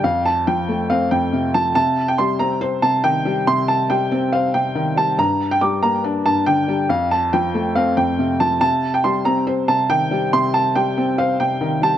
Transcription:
<<
  \new Staff \with { instrumentName = "Upright piano" } { \time 4/4 \key c \dorian \tempo 4 = 140 f''8 a''8 g''4 f''8 g''4 a''8 | a''8. g''16 c'''8 bes''8 r8 a''8 g''4 | c'''8 a''8 g''4 f''8 g''4 a''8 | bes''8. g''16 d'''8 bes''8 r8 a''8 g''4 |
f''8 a''8 g''4 f''8 g''4 a''8 | a''8. g''16 c'''8 bes''8 r8 a''8 g''4 | c'''8 a''8 g''4 f''8 g''4 a''8 | }
  \new Staff \with { instrumentName = "Felt piano" } { \clef bass \time 4/4 \key c \dorian f,4 f8 a8 c'8 f,8 c8 f8 | c4 g8 c'8 c''8 c8 ees8 g8 | c4 g8 c'8 c''8 c8 ees8 g8 | g,4 g8 bes8 d'8 g,8 d8 g8 |
f,4 f8 a8 c'8 f,8 c8 f8 | c4 g8 c'8 c''8 c8 ees8 g8 | c4 g8 c'8 c''8 c8 ees8 g8 | }
>>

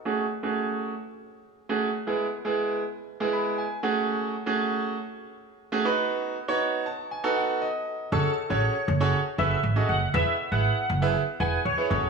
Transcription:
<<
  \new Staff \with { instrumentName = "Digital synth lead" } { \time 4/4 \key fis \dorian \tempo 4 = 119 r1 | r1 | r1 | r1 |
a'8 r16 cis''8. r4 e''8 r8 fis''16 r16 | e''8 r16 fis''8. r4 gis''8 cis''8. r16 | }
  \new Staff \with { instrumentName = "Grand piano" } { \time 4/4 \key fis \dorian << { r1 | r2 r8 b''8 gis''8 fis''8 | r1 | r4. a''8 gis''8 fis''8 dis''4 |
r1 | r1 | } \\ { <a cis' fis' gis'>16 r8 <a cis' fis' gis'>4 r4. <a cis' fis' gis'>16 r8 | <gis b e' gis'>16 r8 <gis b e' gis'>8. r8. <gis b e' gis'>8. r8 <a cis' fis' gis'>8~ | <a cis' fis' gis'>8 r16 <a cis' fis' gis'>4 r4. <a cis' fis' gis'>16 <b dis' fis' b'>8~ | <b dis' fis' b'>8 r16 <b dis' fis' cis''>8. r8. <b dis' fis' a'>8. r4 |
<cis' fis' gis' a' cis''>16 r8 <cis' fis' gis' a' cis''>8 r8 <cis' fis' gis' a' cis''>16 r8 <cis' fis' gis' a' b'>16 r8 <cis' fis' gis' a' dis''>16 r8 | <b e' gis' b' e''>16 r8 <b e' gis' b' e''>8 r8 <b e' gis' b' e''>16 r8 <b e' gis' b' fis''>16 r8 <b e' gis' b' e''>16 <cis' fis' gis' a' cis''>8 | } >> }
  \new Staff \with { instrumentName = "Upright bass" } { \clef bass \time 4/4 \key fis \dorian r1 | r1 | r1 | r1 |
fis,,16 r8 a,,8 r16 fis,,8. r16 fis,,8 gis,,8 fis,,8 | e,,16 r8 gis,,8 r16 fis,,8. r16 e,,8 e,16 r16 fis,,16 e,,16 | }
>>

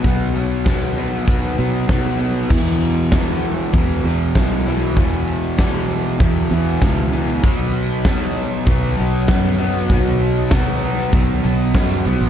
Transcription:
<<
  \new Staff \with { instrumentName = "Distorted electric guitar" } { \clef bass \time 4/4 \key e \mixolydian \tempo 4 = 97 <b, fis b>8 <fis b>8 <b, fis b>8 <fis b>8 <b, fis b>8 <fis b>8 <b, fis b>8 <fis b>8 | <e, b, e>4 <e, b, e>4 <e, b, e>8 <b, e>4 <b, e>8 | <e, b, e>4 <e, b, e>4 <e, b, e>8 <b, e>4 <b, e>8 | <b, fis b>4 <b, fis b>4 <b, fis b>8 <fis b>4 <fis b>8 |
<b, fis b>4 <b, fis b>4 <b, fis b>8 <fis b>4 <fis b>8 | }
  \new Staff \with { instrumentName = "Fingered electric bass" } { \clef bass \time 4/4 \key e \mixolydian b,,2 r8 b,8 b,4 | e,2 e,8 e,8 b,,4 | e,2 e,8 e,8 cis,4 | b,,2 b,,8 b,,8 fis,4 |
b,,2 b,,8 b,,8 fis,8 b,,16 a,,16 | }
  \new DrumStaff \with { instrumentName = "Drums" } \drummode { \time 4/4 <hh bd>8 hh8 <hh bd sn>8 hh8 <hh bd>8 hh8 <hh bd sn>8 hh8 | <cymc bd>8 hh8 <hh bd sn>8 hh8 <hh bd>16 hh16 hh8 <hh bd sn>16 hh16 hh8 | <hh bd>16 hh16 hh16 hh16 <hh bd sn>8 hh8 <hh bd>8 hh16 hh16 <hh bd sn>16 hh16 hh16 hh16 | <hh bd>8 hh8 <hh bd sn>8 hh8 <hh bd>16 hh16 hh8 <hh bd sn>16 hh16 hh8 |
<hh bd>16 hh16 hh16 hh16 <hh bd sn>8 hh16 sn16 <hh bd>8 hh16 hh16 <hh bd sn>16 hh16 hh16 hh16 | }
>>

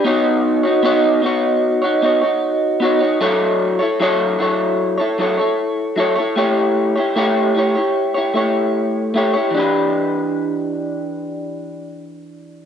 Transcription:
\new Staff \with { instrumentName = "Clean electric guitar" } { \time 4/4 \key e \dorian \tempo 4 = 76 <b dis' fis' cis''>8. <dis' fis' cis''>16 <b dis' fis' cis''>8 <b dis' fis' cis''>8. <dis' fis' cis''>16 <b dis' fis' cis''>16 <dis' fis' cis''>8. <b dis' fis' cis''>16 <dis' fis' cis''>16 | <fis e' a' cis''>8. <e' a' cis''>16 <fis e' a' cis''>8 <fis e' a' cis''>8. <e' a' cis''>16 <fis e' a' cis''>16 <e' a' cis''>8. <fis e' a' cis''>16 <e' a' cis''>16 | <a e' g' cis''>8. <e' g' cis''>16 <a e' g' cis''>8 <a e' g' cis''>16 <e' g' cis''>8 <e' g' cis''>16 <a e' g' cis''>4 <a e' g' cis''>16 <e' g' cis''>16 | <e d' g' b'>1 | }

